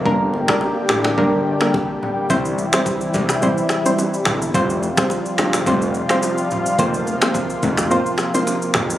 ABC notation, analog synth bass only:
X:1
M:4/4
L:1/16
Q:"Swing 16ths" 1/4=107
K:Cmix
V:1 name="Analog synth bass" clef=bass
G,,,3 z3 A,,,2 G,,,3 z4 z | C,,3 z3 C,,3 z4 z G,,,2 | F,,,3 z3 G,,,2 F,,,3 z4 z | F,,,3 z3 F,,,3 z4 z F,,,2 |]